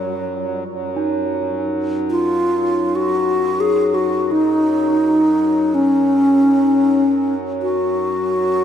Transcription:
Already playing: harmonium F#2, bass flute F#3, singing bowl F4
0.65 harmonium F#2
0.96 singing bowl D#4
2.10 bass flute F4
2.96 bass flute F#4
3.60 bass flute G#4
3.94 bass flute F#4
4.32 bass flute D#4
5.74 bass flute C#4
7.62 bass flute F#4

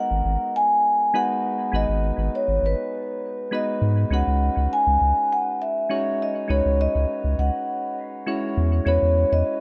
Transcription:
Already playing: synth keys G#3 B3 D#4 F#4 A#4, vibraphone F#5
0.11 sub bass G#1
0.25 sub bass G#1
0.56 vibraphone G#5
1.14 synth keys G#3 B3 D#4 F#4 B4, vibraphone F#5
1.72 sub bass G#1, synth keys G#3 B3 D#4 F#4 B4, vibraphone D#5
1.89 sub bass G#1
2.18 sub bass G#1
2.35 vibraphone C#5
2.48 sub bass G#1
2.63 sub bass G#1, vibraphone B4
3.51 synth keys G#3 B3 D#4 F#4 B4, vibraphone D#5
3.82 sub bass G#2
4.10 sub bass C#2, synth keys G#3 C#4 D#4 F#4 B4, vibraphone F#5
4.27 sub bass C#2
4.57 sub bass C#2
4.73 vibraphone G#5
4.87 sub bass C#2
5.01 sub bass C#2
5.33 vibraphone F#5
5.62 vibraphone E5
5.89 synth keys G#3 C#4 D#4 F#4 C#5
6.22 vibraphone D#5
6.48 sub bass C#2, synth keys G#3 C#4 D#4 F#4 B4, vibraphone C#5
6.66 sub bass C#2
6.81 vibraphone D#5
6.95 sub bass C#2
7.24 sub bass C#2
7.39 sub bass C#2, vibraphone F#5
8.26 synth keys G#3 C#4 E4 F#4 C#5
8.57 sub bass E2
8.85 sub bass E2, synth keys G#3 C#4 E4 F#4 B4, vibraphone C#5
9.02 sub bass E2
9.32 sub bass E2, vibraphone D#5

